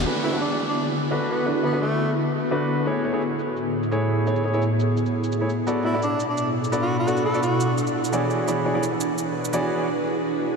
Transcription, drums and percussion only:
2.16 shaker
2.26 shaker
2.43 shaker
2.51 shaker
2.69 shaker
2.87 shaker
3.22 shaker
3.39 shaker
3.57 shaker
3.83 shaker
3.92 shaker
4.27 shaker
4.36 shaker
4.54 shaker
4.62 shaker
4.80 shaker
4.97 shaker
5.06 shaker
5.24 shaker
5.32 shaker
5.50 shaker
5.67 shaker
6.03 shaker
6.20 shaker
6.38 shaker
6.64 shaker
6.73 shaker
7.08 shaker
7.17 shaker
7.35 shaker
7.43 shaker
7.61 shaker
7.78 shaker
7.87 shaker
8.05 shaker
8.13 shaker
8.31 shaker
8.48 shaker
8.83 shaker
9.01 shaker
9.18 shaker
9.45 shaker
9.53 shaker

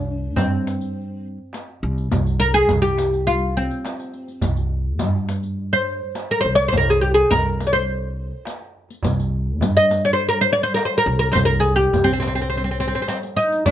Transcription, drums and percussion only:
0.37 riq, darbuka dum
0.67 riq
0.81 riq, darbuka ka
0.96 darbuka ka
1.53 riq, darbuka tek
1.67 darbuka ka
1.82 darbuka ka
1.97 riq, darbuka ka
2.11 riq, darbuka dum
2.26 riq, darbuka ka
2.40 darbuka ka
2.54 riq, darbuka ka
2.68 riq, darbuka dum
2.83 riq
2.97 riq, darbuka tek
3.12 riq, darbuka ka
3.27 riq
3.57 riq
3.71 riq
3.85 riq, darbuka tek
4.00 riq
4.13 riq, darbuka ka
4.27 riq, darbuka ka
4.41 riq, darbuka dum
4.57 riq
4.99 riq, darbuka dum
5.29 riq
5.43 riq, darbuka ka
5.58 darbuka ka
6.15 riq, darbuka tek
6.30 darbuka ka
6.59 riq
6.73 riq, darbuka dum
6.88 riq
7.31 riq, darbuka dum
7.61 riq
7.74 riq, darbuka ka
7.88 darbuka ka
8.45 riq, darbuka tek
8.60 darbuka ka
8.75 darbuka ka
8.89 riq, darbuka ka
9.03 riq, darbuka dum
9.20 riq
9.61 riq, darbuka dum
9.91 riq
10.04 riq, darbuka ka
10.19 darbuka ka
10.77 riq, darbuka tek
10.92 darbuka ka
11.07 darbuka ka
11.21 riq
11.35 riq, darbuka dum
11.64 riq, darbuka ka
11.79 riq
11.93 riq, darbuka dum
12.08 riq, darbuka ka
12.22 riq, darbuka tek
12.37 riq
12.52 darbuka ka
12.94 riq
13.08 riq, darbuka tek
13.23 riq, darbuka ka
13.37 riq, darbuka ka
13.51 riq, darbuka ka
13.65 riq, darbuka dum

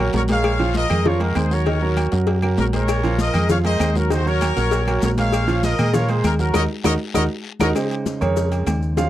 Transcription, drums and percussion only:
0.13 cowbell, high conga, low timbale, short guiro
0.28 cowbell, high conga, low agogo, short guiro
0.44 cowbell, high conga, low agogo, long guiro, claves
0.59 high conga, low agogo
0.74 cowbell, high conga, low timbale, short guiro
0.90 low conga, low agogo, short guiro, claves
1.05 cowbell, high conga, low conga, long guiro
1.20 cowbell, high conga, low agogo
1.35 cowbell, high conga, low timbale, low agogo, short guiro, claves
1.51 short guiro
1.66 cowbell, high conga, low agogo, long guiro
1.82 high conga
1.97 cowbell, high conga, low timbale, low agogo, short guiro, claves
2.12 cowbell, high conga, short guiro
2.27 cowbell, high conga, low agogo, long guiro
2.42 high conga, low agogo, claves
2.58 cowbell, high conga, low timbale, short guiro
2.73 cowbell, high conga, low agogo, short guiro
2.88 cowbell, high conga, low agogo, long guiro, claves, maracas
3.03 high conga, low agogo, maracas
3.19 cowbell, high conga, low timbale, short guiro, maracas
3.34 low conga, low agogo, short guiro, claves, maracas
3.49 cowbell, high conga, low conga, long guiro, maracas
3.64 cowbell, high conga, low agogo, maracas
3.80 cowbell, high conga, low timbale, low agogo, short guiro, claves, maracas
3.95 high conga, short guiro, maracas
4.10 cowbell, low agogo, long guiro, maracas
4.26 high conga, maracas
4.41 cowbell, high conga, low timbale, low agogo, short guiro, claves, maracas
4.57 cowbell, high conga, short guiro, maracas
4.71 cowbell, high conga, low agogo, long guiro, maracas
4.87 high conga, low agogo, claves, maracas
5.02 cowbell, high conga, low timbale, short guiro, maracas
5.18 cowbell, high conga, low agogo, short guiro, maracas
5.33 cowbell, low agogo, long guiro, claves, maracas
5.48 high conga, low agogo, maracas
5.63 cowbell, high conga, low timbale, short guiro, maracas
5.78 low conga, low agogo, short guiro, claves, maracas
5.93 cowbell, high conga, low conga, long guiro, maracas
6.09 cowbell, high conga, low agogo, maracas
6.24 cowbell, high conga, low timbale, low agogo, short guiro, claves, maracas
6.39 high conga, short guiro, maracas
6.54 cowbell, high conga, high timbale, long guiro, claves, maracas
6.84 cowbell, high conga, high timbale, long guiro, claves, maracas
7.14 cowbell, high conga, high timbale, long guiro, claves, maracas
7.60 cowbell, high conga, high timbale, long guiro, claves, maracas
7.75 cowbell, high conga, low agogo, claves, maracas
7.91 high conga, low agogo, maracas
8.06 cowbell, high conga, low timbale, maracas
8.21 low conga, low agogo, claves, maracas
8.37 cowbell, high conga, maracas
8.52 cowbell, high conga, low agogo, maracas
8.67 cowbell, high conga, low timbale, low agogo, claves, maracas
8.82 maracas
8.97 cowbell, high conga, low agogo, maracas

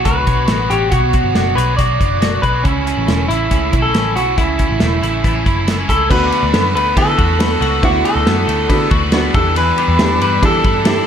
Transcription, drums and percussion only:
0.05 kick, closed hi-hat
0.27 kick, closed hi-hat
0.48 snare, closed hi-hat
0.71 closed hi-hat
0.92 kick, closed hi-hat
1.13 kick, closed hi-hat
1.35 snare, closed hi-hat
1.58 closed hi-hat
1.79 kick, closed hi-hat
2.01 kick, closed hi-hat
2.22 snare, closed hi-hat
2.43 kick, closed hi-hat
2.65 kick, closed hi-hat
2.87 closed hi-hat
3.08 snare, closed hi-hat
3.31 closed hi-hat
3.51 kick, closed hi-hat
3.73 kick, closed hi-hat
3.94 snare, closed hi-hat
4.17 closed hi-hat
4.38 kick, closed hi-hat
4.59 kick, closed hi-hat
4.80 snare, closed hi-hat
5.03 closed hi-hat
5.24 kick, closed hi-hat
5.46 kick, closed hi-hat
5.68 snare, closed hi-hat
5.89 kick, closed hi-hat
6.11 kick, crash
6.32 ride
6.54 snare, ride
6.77 ride
6.97 kick, ride
7.19 kick, ride
7.40 snare, ride
7.62 ride
7.83 kick, ride
8.05 ride
8.27 snare, ride
8.49 ride
8.70 kick, ride
8.91 kick, ride
9.12 snare, ride
9.34 kick, ride
9.56 ride
9.78 ride
9.99 snare, ride
10.21 ride
10.43 kick, ride
10.64 kick, ride
10.85 snare, ride

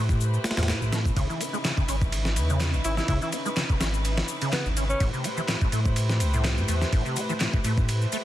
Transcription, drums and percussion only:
0.09 kick, shaker
0.21 shaker
0.34 shaker
0.44 snare, ride, shaker
0.51 snare, ride
0.57 snare, ride, shaker
0.63 snare, ride
0.68 snare, clap, ride, shaker
0.82 shaker
0.92 snare, ride, shaker
1.05 kick, shaker
1.16 kick, ride, shaker
1.30 shaker
1.41 ride, shaker
1.54 shaker
1.65 snare, clap, ride, shaker
1.78 kick, shaker
1.89 ride, shaker
2.02 kick, shaker
2.12 ride, shaker
2.25 snare, shaker
2.36 ride, shaker
2.50 shaker
2.60 snare, clap, ride, shaker
2.74 shaker
2.84 ride, shaker
2.97 snare, shaker
3.08 kick, ride, shaker
3.22 shaker
3.33 ride, shaker
3.46 shaker
3.57 snare, clap, ride, shaker
3.70 kick, shaker
3.81 snare, ride, shaker
3.94 shaker
4.05 ride, shaker
4.17 snare, ride, shaker
4.28 shaker
4.41 ride, shaker
4.53 snare, clap, ride, shaker
4.66 shaker
4.77 ride, shaker
4.90 shaker
5.00 kick, ride, shaker
5.14 shaker
5.24 ride, shaker
5.37 shaker
5.48 snare, clap, ride, shaker
5.61 kick, shaker
5.72 ride, shaker
5.85 kick, shaker
5.96 ride, shaker
6.09 snare, shaker
6.20 ride, shaker
6.34 shaker
6.44 snare, clap, ride, shaker
6.58 shaker
6.68 ride, shaker
6.81 snare, shaker
6.93 kick, ride, shaker
7.06 shaker
7.16 ride, shaker
7.29 shaker
7.40 snare, clap, ride, shaker
7.53 kick, shaker
7.64 ride, shaker
7.78 kick, shaker
7.89 ride, shaker
8.01 shaker
8.12 ride, shaker

